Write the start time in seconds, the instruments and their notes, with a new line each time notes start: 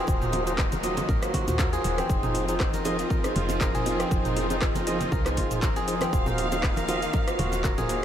Already playing: string section D#3 A#3, kora C4 F#4 G#4 A#4
0.07 fm bass D#1, string section F#3, tonewheel organ F4 F#4 C5, kick, low bongo, cabasa
0.22 kora D#4, mid tom, cabasa
0.32 open hi-hat, high bongo, low bongo, high conga, cabasa
0.47 kora D#4, tonewheel organ F4 F#4 C5, closed hi-hat, cabasa
0.58 kick, cross-stick, clap, cabasa
0.72 kora A#4, closed hi-hat, low bongo, high conga, low conga, cabasa
0.83 tonewheel organ F4 F#4 C5, kora D#5, open hi-hat, high bongo, high conga, cabasa
0.97 closed hi-hat, low bongo, low conga, cabasa
1.09 fm bass A#1, kora A#4, kick, cabasa
1.22 tonewheel organ F4 F#4 C5, cross-stick, closed hi-hat, cabasa
1.34 kora F#4, kick, open hi-hat, low bongo, low conga, cabasa
1.48 fm bass D#2, closed hi-hat, mid tom, cabasa
1.59 kora A#4, kick, clap, low bongo, cabasa
1.73 tonewheel organ F4 F#4 C5, kora G#4, closed hi-hat, cabasa
1.84 fm bass D#1, open hi-hat, cabasa
1.98 kora C4, cross-stick, closed hi-hat, low bongo, high conga, cabasa
2.09 fm bass F1, string section F3 C4 F4, tonewheel organ D#4 G#4 C5, kick, cabasa
2.23 kora D#4, mid tom, low bongo, cabasa
2.34 open hi-hat, high bongo, cabasa
2.49 tonewheel organ D#4 G#4 C5, kora D#4, closed hi-hat, cabasa
2.60 kick, cross-stick, clap, low bongo, cabasa
2.73 kora A#4, closed hi-hat, high conga, cabasa
2.85 tonewheel organ D#4 G#4 C5, kora D#5, open hi-hat, high bongo, low bongo, high conga, cabasa
2.99 closed hi-hat, cabasa
3.10 kora A#4, kick, high conga, cabasa
3.24 tonewheel organ D#4 G#4 C5, cross-stick, closed hi-hat, low bongo, cabasa
3.35 fm bass F1, kora F4, open hi-hat, high conga, low conga, cabasa
3.49 closed hi-hat, low bongo, high conga, cabasa
3.61 kora A#4, kick, clap, low conga, cabasa
3.75 tonewheel organ D#4 G#4 C5, kora G#4, closed hi-hat, mid tom, cabasa
3.86 open hi-hat, high bongo, low bongo, cabasa
4.00 kora C4, cross-stick, closed hi-hat, cabasa
4.11 fm bass F1, tonewheel organ D#4 G#4 C5, kick, low bongo, cabasa
4.25 kora D#4, closed hi-hat, mid tom, cabasa
4.36 open hi-hat, high bongo, high conga, cabasa
4.50 tonewheel organ D#4 G#4 C5, kora D#4, closed hi-hat, low bongo, cabasa
4.62 kick, cross-stick, clap, cabasa
4.75 kora A#4, closed hi-hat, low bongo, high conga, low conga, cabasa
4.87 tonewheel organ D#4 G#4 C5, kora D#5, open hi-hat, high bongo, high conga, cabasa
5.00 closed hi-hat, low conga, cabasa
5.12 fm bass C2, kora A#4, kick, low bongo, cabasa
5.26 tonewheel organ D#4 G#4 C5, cross-stick, clap, closed hi-hat, high bongo, cabasa
5.37 fm bass F1, kora F4, kick, open hi-hat, low bongo, low conga, cabasa
5.51 closed hi-hat, mid tom, cabasa
5.62 tonewheel organ D#4 G#4 C5, kora A#4, kick, clap, cabasa
5.76 kora G#4, closed hi-hat, low bongo, cabasa
5.88 tonewheel organ D#4 G#4 C5, open hi-hat, cabasa
6.01 kora C4, cross-stick, closed hi-hat, low bongo, high conga, cabasa
6.13 fm bass D#1, string section D#3 A#3 F5, tonewheel organ F4 F#4 C5, kick, cabasa
6.26 kora D#4, mid tom, low bongo, cabasa
6.38 open hi-hat, high bongo, cabasa
6.52 kora D#4, tonewheel organ F4 F#4 C5, closed hi-hat, low bongo, cabasa
6.63 kick, cross-stick, clap, cabasa
6.76 kora A#4, closed hi-hat, high conga, cabasa
6.88 tonewheel organ F4 F#4 C5, kora D#5, open hi-hat, high bongo, low bongo, high conga, cabasa
7.02 closed hi-hat, cabasa
7.13 kora A#4, kick, low bongo, high conga, cabasa
7.27 tonewheel organ F4 F#4 C5, cross-stick, closed hi-hat, cabasa
7.39 fm bass D#1, kora F#4, open hi-hat, high conga, low conga, cabasa
7.52 closed hi-hat, low bongo, high conga, cabasa
7.64 kora A#4, kick, clap, low conga, cabasa
7.78 tonewheel organ F4 F#4 C5, kora G#4, closed hi-hat, mid tom, low bongo, cabasa
7.89 open hi-hat, high bongo, cabasa